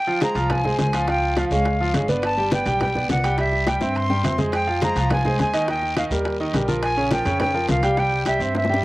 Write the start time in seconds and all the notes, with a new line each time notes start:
Already playing: G5
0.07 F3 F4 F5, high bongo, high conga
0.21 G#3 G#4 C5 A#5, high bongo, high conga, high timbale, short guiro
0.35 C2 F3 F4 F5, high conga, high timbale, short guiro
0.50 G#5, high bongo, high conga, low conga, high timbale, long guiro
0.64 G#3 G#4 C5, high bongo, high conga, low conga
0.78 C#2 G#5, high bongo, low bongo, high conga, high timbale, low timbale, short guiro
0.93 F3 F4 F5, high bongo, high conga, high timbale, short guiro
1.07 F3 F4 F5 G5, high bongo, high conga, high timbale, long guiro
1.22 high bongo, high conga
1.37 F3 F4 F5, high bongo, high conga, high timbale, short guiro
1.51 C#2 G#3 G#4 C#5 F5, high conga, short guiro
1.65 high bongo, high conga, high timbale, long guiro
1.80 F3 F4 F5, high bongo, high conga
1.94 G1 G#3 G#4 C#5, high bongo, low bongo, high conga, high timbale, short guiro
2.08 B3 B4 D5, high bongo, high conga, short guiro
2.22 A5, high bongo, high conga, high timbale, long guiro
2.38 G3 G4 G5, high bongo, high conga
2.51 B3 B4 D5 G5, high bongo, high conga, high timbale, short guiro
2.66 B1 G3 G4 G5, high timbale, short guiro
2.80 G5, high bongo, high conga, low conga, high timbale, long guiro
2.95 B3 B4 D5, high bongo, high conga, low conga
3.09 C2 F#5, high bongo, low bongo, high conga, high timbale, low timbale, short guiro
3.24 G3 G4 G5, high bongo, high conga, high timbale, short guiro
3.38 G3 G4 E5 G5, high bongo, high conga, high timbale, long guiro
3.52 high bongo, high conga
3.67 G3 G4 G5, high bongo, high conga, high timbale, short guiro
3.80 G2 C4 C5 E5, high bongo, high conga, short guiro
3.95 C6, high conga, high timbale, long guiro
4.09 G3 G4 G5, low bongo, high conga
4.24 F2 C4 C5 E5, low bongo, high conga, high timbale, low timbale, short guiro
4.38 G#3 G#4 C5, low bongo, high conga, short guiro
4.52 G5, high bongo, high conga, high timbale, long guiro
4.67 F3 F4 F5, high bongo, high conga
4.81 G#3 G#4 C5 A#5, high bongo, high conga, high timbale, short guiro
4.95 C2 F3 F4 F5, high conga, high timbale, short guiro
5.10 G#5, high bongo, high conga, low conga, high timbale, long guiro
5.25 G#3 G#4 C5, high bongo, high conga, low conga
5.38 D#2 G#5, high bongo, low bongo, high conga, high timbale, short guiro
5.53 D#3 D#4 D#5, high bongo, high conga, high timbale, short guiro
5.68 D#3 D#4 D#5 G5, high bongo, high conga, high timbale, long guiro
5.82 high bongo, high conga
5.97 D#3 D#4 D#5 F5, high bongo, high conga, high timbale, short guiro
6.10 D#2 G3 G4 A#4, high conga, short guiro
6.25 high bongo, high conga, high timbale, long guiro
6.40 D#3 D#4 D#5, high bongo, high conga
6.54 A#1 G3 G4 A#4, high bongo, low bongo, high conga, high timbale, short guiro
6.68 F3 F4 A#4, high bongo, high conga, short guiro
6.82 G#5, high bongo, high conga, high timbale, long guiro
6.97 C#3 C#4 C#5, high bongo, high conga
7.11 F3 F4 A#4 G5, high bongo, high conga, high timbale, short guiro
7.25 F2 C#3 C#4 C#5, high conga, high timbale, short guiro
7.40 G5, high bongo, high conga, low conga, high timbale, long guiro
7.54 F3 F4 A#4, high bongo, high conga
7.68 C2 F5, high bongo, low bongo, high conga, high timbale, low timbale, short guiro
7.83 G3 G4 G5, high bongo, high timbale, short guiro
7.97 G3 G4 G5, high bongo, high conga, high timbale, long guiro
8.11 high bongo, high conga
8.26 G3 G4 E5 G5, high bongo, high conga, high timbale, short guiro
8.40 G2 C4 C5 E5, high conga, short guiro
8.55 E5, high bongo, high conga, high timbale, long guiro
8.65 high bongo
8.69 G3 G4 G5, high conga
8.74 low bongo